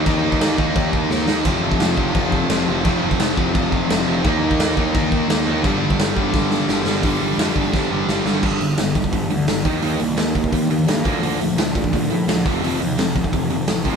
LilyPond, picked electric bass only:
\new Staff \with { instrumentName = "Picked electric bass" } { \clef bass \time 4/4 \key g \minor \tempo 4 = 172 ees,8 ees,8 ees,8 ees,8 ees,4 ees,8 ees,8 | f,,8 f,,8 f,,8 f,,8 f,,4 f,,8 f,,8 | f,,8 f,,8 f,,8 f,,8 f,,4 f,,8 f,,8 | ees,8 ees,8 ees,8 ees,8 ees,4 ees,8 ees,8 |
g,,8 g,,8 g,,8 g,,8 g,,4 g,,8 g,,8 | g,,8 g,,8 f,8 g,,8 g,,8 g,,8 g,,8 g,,8 | g,,8 g,,8 g,,8 g,,8 g,,8 d,8 g,,8 ees,8 | ees,8 c,8 ees,8 ees,8 ees,8 ees,8 g,8 d,8 |
d,8 d,8 d,8 d,8 d,8 a,8 d,8 f,,8 | f,,8 ees,8 f,,8 f,,8 f,,8 f,,8 a,,8 a,,8 | }